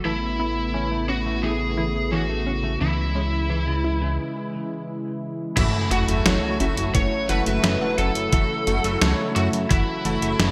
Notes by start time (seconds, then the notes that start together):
0.05 A1 C#3 E3 A3 B3 E4
0.40 B3 E4
0.74 E3 C#4
0.91 A3
1.09 C#4 F#4
1.26 A3
1.43 E3 A3 G#4
1.77 E3 E4
2.12 E3 C#4 F#4
2.29 A3
2.47 C#4
2.64 A3
2.81 C#2 C#3 E3 G#3 E4
3.15 G#3 C#4
3.50 E3
3.67 C#3
3.84 E4
4.02 C#3
5.57 F#1 C#3 E3 F#3 A3 E4 F#4 E5, kick, closed hi-hat, crash, sub drop
5.91 F#1 A3 F#4 F#5, closed hi-hat
6.08 F#1 A3 F#4 E5, closed hi-hat
6.26 F#1 E3 A3 F#4 C#5, snare, closed hi-hat
6.60 F#1 A3 C#4 F#4 E5, closed hi-hat
6.77 F#1, closed hi-hat
6.95 F#1 E3 A3 F#4 C#5 F#5, kick, closed hi-hat
7.29 F#1 E3 A3 F#4 B4 F#5, closed hi-hat
7.46 F#1 A3 F#4 E5, closed hi-hat
7.64 F#2 E3, snare, closed hi-hat
7.81 A3 F#4 F#5
7.98 F#1 A3 C#4 F#4 A4 F#5, closed hi-hat
8.15 F#2, closed hi-hat
8.33 F#1 E3 A3 F#4 E5, kick, closed hi-hat
8.67 F#1 A3 F#4 F#5, closed hi-hat
8.84 F#1 A3 F#4 E5, closed hi-hat
9.02 C#2 E3 A3 F#4 C#5, snare, closed hi-hat
9.36 F#2 A3 C#4 F#4 E5, closed hi-hat
9.53 F#2, closed hi-hat
9.70 F#1 E3 A3 E4 F#4 F#5, kick, closed hi-hat
10.05 F#1 E3 A3 F#4 F#5, closed hi-hat
10.22 F#1 A3 F#4 E5, closed hi-hat
10.39 F#1 E3, snare, closed hi-hat